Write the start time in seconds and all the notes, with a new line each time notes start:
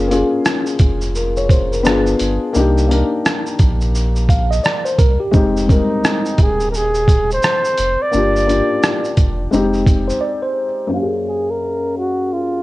Already playing: F#1 A#3 C#4 F4 G#4
0.08 A#3 C#4 F4, closed hi-hat, shaker
0.12 G#4
0.46 cross-stick, shaker
0.67 shaker
0.79 F1, kick, closed hi-hat, shaker
1.01 shaker
1.15 A#4, shaker
1.36 C#5, shaker
1.49 C5, kick, closed hi-hat, shaker
1.72 A#4, shaker
1.83 G1 B3 D4 F4, cross-stick, shaker
1.88 G#4
2.06 shaker
2.19 G1, closed hi-hat, shaker
2.53 C2 A#3 D4 D#4, shaker
2.58 G4
2.78 shaker
2.88 A#3 D4 D#4, closed hi-hat, shaker
2.92 A#4
3.25 cross-stick, shaker
3.46 shaker
3.59 A#1, kick, closed hi-hat, shaker
3.81 shaker
3.95 shaker
4.16 shaker
4.29 F5, kick, closed hi-hat, shaker
4.51 D#5, shaker
4.64 D5, cross-stick, shaker
4.85 C5, shaker
4.99 C2 A#4, kick, closed hi-hat, shaker
5.20 G4
5.31 F1 G#3 C4 D#4, kick, shaker
5.36 G4
5.57 shaker
5.66 G3 C4 D#4, kick
5.70 G#3 D#4 A#4, closed hi-hat, shaker
6.04 cross-stick, shaker
6.26 shaker
6.38 D#1 G#4, kick, closed hi-hat, shaker
6.60 shaker
6.71 A#4, shaker
6.76 G#4
6.95 shaker
7.08 kick, closed hi-hat, shaker
7.31 C5, shaker
7.43 cross-stick, shaker
7.65 shaker
7.78 F1, closed hi-hat, shaker
8.02 D5
8.11 G1 A#3 D4 F4, shaker
8.16 G4
8.36 shaker
8.46 A#3 D4 F4, closed hi-hat, shaker
8.51 G4
8.83 cross-stick, shaker
9.04 shaker
9.17 F1, kick, closed hi-hat, shaker
9.51 F1 G#3 C4 D#4, shaker
9.55 G4
9.73 shaker
9.86 kick, closed hi-hat, shaker
10.08 C5, shaker
10.21 D5
10.42 C5
10.87 F#2 A#3
10.92 C#4 F5
10.97 G4
11.03 G#4
11.29 G#4
11.50 A#4
11.98 F#4
12.33 F4